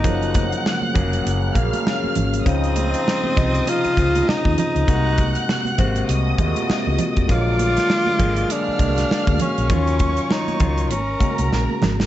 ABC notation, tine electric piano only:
X:1
M:4/4
L:1/16
Q:"Swing 16ths" 1/4=99
K:Db
V:1 name="Tine electric piano" clef=bass
[D,F,G,B,]4- [D,F,G,B,] z [D,G,B,A]3 z [D,G,B,D]4- [D,G,B,D] z | [D,F,CE]2 z [D,F,CE]2 z [C,F,CE]3 z [D,F,CF]4- [D,F,CF] z | [_C,=C,A,B,G]4- [_C,=C,A,B,G] z [C,A,B,G]3 z [C,A,B,FG]4- [C,A,B,FG] z | [=D,G,A,B,]2 z [D,A,B,=D]2 z [D,A,B,A]3 z [D,A,B,G]4- [D,A,B,G] z |
[E,G,DF]4- [E,G,DF] z [E,G,DF]2 z2 [D,A,B,G]4- [D,A,B,G] z |]